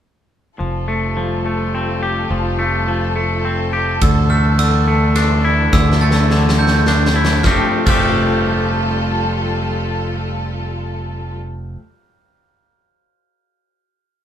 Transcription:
0.58 F1 F3 G3 F4 A4
0.88 A3
1.17 F3
1.46 A3
1.75 C4
2.03 G4
2.30 F1 F3
2.59 A3
2.88 F3
3.16 A3
3.45 C4
3.73 G4
4.01 D2 D3 E3 D4 E6, kick, ride
4.30 A3 F6
4.59 D3 E6, ride
4.88 A3
5.16 D4, cross-stick, ride
5.44 E4
5.73 D2 D3 E6, kick, snare
5.92 snare
6.01 A3 A6
6.11 snare
6.30 D3, snare
6.49 snare
6.59 A3 G6
6.67 snare
6.86 D4, snare
7.06 snare
7.16 E4
7.25 snare
7.43 F1 F3 G3 A3 C4 F4 G4 A4 F6, kick, snare
7.86 F1 F3 A3 C4 G4 F6, kick, crash

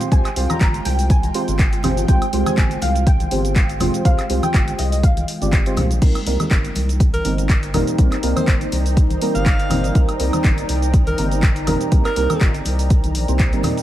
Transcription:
Already playing: G#3 F4 G5
0.01 closed hi-hat, shaker
0.11 C2 G#3 C4 F4 G4 C5 G#5, kick, closed hi-hat, shaker
0.25 clap, closed hi-hat, high woodblock, shaker
0.36 C2 G#3 C4 F4 G4 C5, open hi-hat
0.50 A#5, closed hi-hat, high conga, high woodblock, shaker
0.61 G1, kick, clap, closed hi-hat, shaker
0.74 closed hi-hat, shaker
0.85 C2 G5, open hi-hat, muted conga
0.99 open hi-hat, shaker
1.10 G#5, kick, closed hi-hat, shaker
1.23 closed hi-hat, high conga, shaker
1.34 G#3 C4 F4 G4 C5, open hi-hat
1.48 G1, closed hi-hat, shaker
1.59 kick, clap, closed hi-hat, shaker
1.73 closed hi-hat, shaker
1.83 G#3 C4 F4 G4 C5, open hi-hat, high conga, low conga, high woodblock
1.97 closed hi-hat, shaker
2.08 C2 G#3 C4 F4 G4 C5 G5, kick, closed hi-hat, shaker
2.22 closed hi-hat, high woodblock, shaker
2.33 C2 G#3 C4 F4 G4 C5, open hi-hat
2.46 G#5, closed hi-hat, high conga, high woodblock, shaker
2.58 G1, kick, clap, closed hi-hat, shaker
2.71 closed hi-hat, shaker
2.82 C2 F5, open hi-hat, muted conga
2.96 closed hi-hat, shaker
3.07 G5, kick, closed hi-hat, shaker
3.20 closed hi-hat, high conga, shaker
3.31 G1 G#3 C4 F4 G4 C5, open hi-hat
3.45 closed hi-hat, shaker
3.56 kick, clap, closed hi-hat, shaker
3.69 closed hi-hat, shaker
3.80 G#3 C4 F4 G4 C5, open hi-hat, high conga, low conga, high woodblock
3.94 closed hi-hat, shaker
4.05 C2 G#3 C4 F4 G4 C5 F5, kick, closed hi-hat, shaker
4.19 clap, closed hi-hat, high woodblock, shaker
4.29 C2 G#3 C4 F4 G4 C5, open hi-hat
4.43 G5, closed hi-hat, high conga, high woodblock, shaker
4.54 G1, kick, clap, closed hi-hat, shaker
4.68 closed hi-hat, shaker
4.79 C2 D#5, open hi-hat, muted conga
4.92 open hi-hat, shaker
5.03 F5, kick, closed hi-hat, shaker
5.17 closed hi-hat, high conga, shaker
5.28 open hi-hat
5.41 G1 G#3 C4 F4 G4 D5, closed hi-hat, shaker
5.53 kick, clap, closed hi-hat, shaker
5.66 G#3 C4 F4 G4 C5, closed hi-hat, shaker
5.77 C2, open hi-hat, high conga, low conga, high woodblock
5.91 A#1, closed hi-hat, shaker
6.02 C2 G3 A#3 C4 D#4 A#4 D5 D#5 G5, kick, closed hi-hat, crash, shaker
6.15 closed hi-hat, high woodblock, shaker
6.26 C2 G3 A#3 C4 D#4 A#4, open hi-hat
6.40 C5, closed hi-hat, high conga, high woodblock, shaker
6.51 G1, kick, clap, closed hi-hat, shaker
6.65 closed hi-hat, shaker
6.71 A#5
6.75 C2, open hi-hat, muted conga
6.89 closed hi-hat, shaker
7.00 kick, closed hi-hat, shaker
7.14 A#4, closed hi-hat, high conga, shaker
7.25 G1 G3 A#3 C4 D#4 A#4, open hi-hat
7.38 closed hi-hat, shaker
7.49 kick, clap, closed hi-hat, shaker
7.63 closed hi-hat, shaker
7.74 G3 A#3 C4 D#4 A#4, open hi-hat, high conga, low conga, high woodblock
7.87 closed hi-hat, shaker
7.98 C2 G3 A#3 C4 D#4 A#4, kick, closed hi-hat, shaker
8.12 clap, closed hi-hat, high woodblock, shaker
8.23 C2 G3 A#3 C4 D#4 A#4, open hi-hat
8.36 C5, closed hi-hat, high conga, high woodblock, shaker
8.48 G1 C5, kick, clap, closed hi-hat, shaker
8.61 closed hi-hat, shaker
8.72 C2, open hi-hat, muted conga
8.86 open hi-hat, shaker
8.97 kick, closed hi-hat, shaker
9.10 closed hi-hat, high conga, shaker
9.21 G3 A#3 C4 D#4 A#4, open hi-hat
9.35 G1 F5, closed hi-hat, shaker
9.46 kick, clap, closed hi-hat, shaker
9.59 closed hi-hat, shaker
9.70 G3 A#3 C4 D#4 A#4, open hi-hat, high conga, low conga, high woodblock
9.84 closed hi-hat, shaker
9.95 C2 G3 A#3 C4 D#4 A#4, kick, closed hi-hat, shaker
10.09 closed hi-hat, high woodblock, shaker
10.20 C2 G3 A#3 C4 D#4 A#4, open hi-hat
10.33 closed hi-hat, high conga, high woodblock, shaker
10.44 G1, kick, clap, closed hi-hat, shaker
10.58 closed hi-hat, shaker
10.69 C2, open hi-hat, muted conga
10.82 closed hi-hat, shaker
10.94 kick, closed hi-hat, shaker
11.07 A#4, closed hi-hat, high conga, shaker
11.18 G1 G3 A#3 C4 D#4 A#4, open hi-hat
11.31 closed hi-hat, shaker
11.43 kick, clap, closed hi-hat, shaker
11.56 closed hi-hat, shaker
11.67 G3 A#3 C4 D#4 A#4, open hi-hat, high conga, low conga, high woodblock
11.81 closed hi-hat, shaker
11.92 C2 G3 A#3 C4 D#4 A#4, kick, closed hi-hat, shaker
12.05 A#4, clap, closed hi-hat, high woodblock, shaker
12.16 C2 G3 A#3 C4 D#4 A#4, open hi-hat
12.30 closed hi-hat, high conga, high woodblock, shaker
12.41 G1, kick, clap, closed hi-hat, shaker
12.54 closed hi-hat, shaker
12.65 C2, open hi-hat, muted conga
12.79 open hi-hat, shaker
12.90 kick, closed hi-hat, shaker
13.04 closed hi-hat, high conga, shaker
13.15 A#1, open hi-hat
13.28 C2 G3 A#3 C4 D#4 C5, closed hi-hat, shaker
13.39 kick, clap, closed hi-hat, shaker
13.53 G1 G3 A#3 C4 D#4 A#4, closed hi-hat, shaker
13.63 open hi-hat, high conga, low conga, high woodblock
13.78 closed hi-hat, shaker

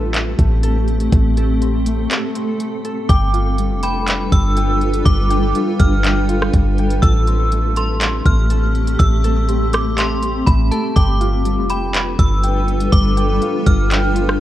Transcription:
Already playing: A1 A3 C4 F4 G4 A4 G5
0.14 clap, closed hi-hat
0.39 A1 A3, kick, closed hi-hat
0.63 A4, closed hi-hat
0.88 closed hi-hat
1.00 closed hi-hat
1.12 A1 A3 A4, kick, closed hi-hat
1.37 A4, closed hi-hat
1.61 C4, closed hi-hat
1.86 A3, closed hi-hat
2.11 A4, clap, closed hi-hat
2.35 C4, closed hi-hat
2.60 A3, closed hi-hat
2.85 A4, closed hi-hat
3.09 G1 G3 D4 F4 A4 B4 G5 D6, kick, closed hi-hat
3.33 F4, closed hi-hat
3.58 G3, closed hi-hat
3.71 F1
3.83 G5 B5, closed hi-hat
4.08 clap, closed hi-hat
4.32 G1 G3 E6, kick, closed hi-hat
4.57 G5, closed hi-hat
4.81 closed hi-hat
4.94 closed hi-hat
5.06 G1 G3 D6, kick, closed hi-hat
5.30 G5, closed hi-hat
5.55 F4, closed hi-hat
5.80 G1 G3 F6, kick, closed hi-hat
6.04 G5, clap, closed hi-hat
6.29 F4, closed hi-hat
6.42 cross-stick
6.53 G1 G3, kick, closed hi-hat
6.78 G5, closed hi-hat
6.90 closed hi-hat
7.02 A1 A3 C4 G4 A4 E6, kick, closed hi-hat
7.27 C4, closed hi-hat
7.52 A3, closed hi-hat
7.76 A4 C6, closed hi-hat
8.01 clap, closed hi-hat
8.26 A1 A3 F6, kick, closed hi-hat
8.50 A4, closed hi-hat
8.75 closed hi-hat
8.87 closed hi-hat
8.99 A1 A3 E6, kick, closed hi-hat
9.24 A4, closed hi-hat
9.48 C4, closed hi-hat
9.73 A3 D6, cross-stick, closed hi-hat
9.98 A4 C6, clap, closed hi-hat
10.22 C4, closed hi-hat
10.46 A1 A3 B5, kick, closed hi-hat
10.71 A4 A5, closed hi-hat
10.96 G1 G3 D4 F4 A4 B4 G5 D6, kick, closed hi-hat
11.20 F4, closed hi-hat
11.45 G3, closed hi-hat
11.58 F1
11.70 G5 B5, closed hi-hat
11.95 clap, closed hi-hat
12.19 G1 G3 E6, kick, closed hi-hat
12.44 G5, closed hi-hat
12.68 closed hi-hat
12.81 closed hi-hat
12.93 G1 G3 D6, kick, closed hi-hat
13.17 G5, closed hi-hat
13.42 F4, closed hi-hat
13.67 G1 G3 F6, kick, closed hi-hat
13.91 G5, clap, closed hi-hat
14.16 F4, closed hi-hat
14.29 cross-stick

